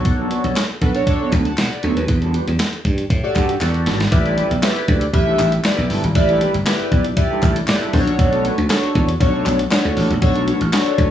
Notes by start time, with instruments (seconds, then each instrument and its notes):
Already playing: slap bass B1, analog polysynth D4 F#4 A4 C#5
0.05 muted clean electric guitar stroke, kick, closed hi-hat
0.19 clean electric guitar F#3 B3 D4 A4
0.31 clean electric guitar F#3 B3 D4 B4, closed hi-hat
0.44 slap bass B1, muted clean electric guitar stroke, closed hi-hat
0.56 muted clean electric guitar stroke, snare, clap, closed hi-hat
0.69 muted clean electric guitar stroke
0.81 slap bass B1, analog polysynth D4 F#4 A4 B4, kick, closed hi-hat
0.95 analog polysynth D4 F#4 A4 C#5, muted clean electric guitar stroke, closed hi-hat
1.07 analog polysynth D4 F#4 A4 C#5, muted clean electric guitar stroke, kick, closed hi-hat
1.21 clean electric guitar F#3 B3 D4 A4
1.32 slap bass D2, clean electric guitar F#3 B3 D4 A4, kick, clap, closed hi-hat
1.45 analog polysynth F#5 A5, muted clean electric guitar stroke, closed hi-hat
1.58 slap bass B2, analog polysynth D5 F#5, snare, clap, closed hi-hat
1.71 analog polysynth B4 D5, muted clean electric guitar stroke
1.83 slap bass D2, clean electric guitar F#3 B3 D4 A4, analog polysynth A4 C#5, closed hi-hat
1.97 slap bass D#2, analog polysynth B4, muted clean electric guitar stroke, closed hi-hat
2.08 slap bass E2, muted clean electric guitar stroke, kick, closed hi-hat
2.22 clean electric guitar G3 D4 F#4 A4, closed hi-hat
2.34 clean electric guitar G3 D4 F#4 B4, closed hi-hat
2.47 slap bass E2, muted clean electric guitar stroke, closed hi-hat
2.59 muted clean electric guitar stroke, snare, clap, closed hi-hat
2.73 muted clean electric guitar stroke, closed hi-hat
2.85 slap bass G2, kick, closed hi-hat
2.98 muted clean electric guitar stroke, closed hi-hat
3.10 slap bass A2, kick, closed hi-hat
3.24 analog polysynth F#4 G4 A4 D5, muted clean electric guitar stroke
3.36 slap bass G2, clean electric guitar G3 D4 F#4 A4, kick, clap, closed hi-hat
3.49 muted clean electric guitar stroke, closed hi-hat
3.61 slap bass E2, analog polysynth F#4 G4 A4 D5, snare, clap, closed hi-hat
3.74 muted clean electric guitar stroke, closed hi-hat
3.86 slap bass G#1, clean electric guitar G3 D4 F#4 A4, snare, closed hi-hat
4.00 muted clean electric guitar stroke, snare, closed hi-hat
4.11 slap bass A1, analog polysynth E4 G4 B4 D5, muted clean electric guitar stroke, kick, closed hi-hat
4.25 clean electric guitar G3 D4 E4 A4, closed hi-hat
4.37 clean electric guitar G3 D4 E4 B4, closed hi-hat
4.51 slap bass B1, muted clean electric guitar stroke, closed hi-hat
4.62 analog polysynth E4 G4 B4 C#5, muted clean electric guitar stroke, snare, clap, closed hi-hat
4.69 analog polysynth D5
4.76 muted clean electric guitar stroke, closed hi-hat
4.88 slap bass D2, kick, closed hi-hat
5.01 muted clean electric guitar stroke, closed hi-hat
5.13 slap bass A1, analog polysynth E4 G4 B4 E5, muted clean electric guitar stroke, kick, closed hi-hat
5.27 clean electric guitar G3 D4 E4 A4
5.39 slap bass A1, clean electric guitar G3 D4 E4 A4, clap, closed hi-hat
5.52 muted clean electric guitar stroke, closed hi-hat
5.64 analog polysynth E4 G4 B4 D5, muted clean electric guitar stroke, snare, clap, closed hi-hat
5.78 slap bass B1, muted clean electric guitar stroke
5.90 slap bass G1, clean electric guitar G3 D4 E4 A4, open hi-hat
6.04 slap bass G#1, muted clean electric guitar stroke, closed hi-hat
6.15 slap bass A1, analog polysynth E4 G4 B4 D5, muted clean electric guitar stroke, kick, closed hi-hat
6.29 clean electric guitar G3 D4 E4 A4, closed hi-hat
6.41 clean electric guitar G3 D4 E4 B4, closed hi-hat
6.54 slap bass G1, muted clean electric guitar stroke, closed hi-hat
6.66 analog polysynth E4 G4 B4 D5, muted clean electric guitar stroke, snare, clap, closed hi-hat
6.80 muted clean electric guitar stroke, closed hi-hat
6.92 slap bass B1, kick, closed hi-hat
7.04 muted clean electric guitar stroke, closed hi-hat
7.17 analog polysynth E4 G4 B4 D5, muted clean electric guitar stroke, kick, closed hi-hat
7.31 clean electric guitar G3 D4 E4 A4
7.43 slap bass A1, clean electric guitar G3 D4 E4 A4, kick, clap, closed hi-hat
7.56 muted clean electric guitar stroke, closed hi-hat
7.67 slap bass A2, analog polysynth E4 G4 B4 D5, muted clean electric guitar stroke, snare, clap, closed hi-hat
7.82 clean electric guitar G3 D4 E4 A4
7.93 slap bass B1, analog polysynth D4 F#4 A4 C5, muted clean electric guitar stroke, kick, open hi-hat
8.00 analog polysynth C#5
8.07 slap bass A#1, muted clean electric guitar stroke, closed hi-hat
8.19 slap bass B1, muted clean electric guitar stroke, kick, closed hi-hat
8.33 clean electric guitar A3 D4 F#4 A4, closed hi-hat
8.45 clean electric guitar A3 D4 F#4 B4, closed hi-hat
8.58 slap bass D2, muted clean electric guitar stroke, closed hi-hat
8.69 analog polysynth D4 F#4 A4 C#5, muted clean electric guitar stroke, snare, clap, closed hi-hat
8.83 muted clean electric guitar stroke, closed hi-hat
8.95 slap bass E2, kick, closed hi-hat
9.09 muted clean electric guitar stroke, closed hi-hat
9.20 slap bass B1, analog polysynth C#4 F#4 A4 C#5, muted clean electric guitar stroke, kick, closed hi-hat
9.26 analog polysynth D4
9.34 clean electric guitar A3 D4 F#4 A4
9.45 slap bass B1, clean electric guitar A3 D4 F#4 A4, clap, closed hi-hat
9.59 muted clean electric guitar stroke, closed hi-hat
9.71 analog polysynth D4 F#4 A4 C#5, snare, clap, closed hi-hat
9.85 slap bass D2, muted clean electric guitar stroke
9.96 slap bass A1, clean electric guitar A3 D4 F#4 A4, open hi-hat
10.10 slap bass A#1, muted clean electric guitar stroke, closed hi-hat
10.22 slap bass B1, analog polysynth D4 F#4 A4 C#5, muted clean electric guitar stroke, kick, closed hi-hat
10.35 clean electric guitar A3 D4 F#4 A4, closed hi-hat
10.47 clean electric guitar A3 D4 F#4 B4, closed hi-hat
10.61 slap bass A1, muted clean electric guitar stroke, closed hi-hat
10.72 analog polysynth D4 F#4 A4 C#5, snare, clap, closed hi-hat
10.86 muted clean electric guitar stroke, closed hi-hat
10.98 slap bass D2, kick, closed hi-hat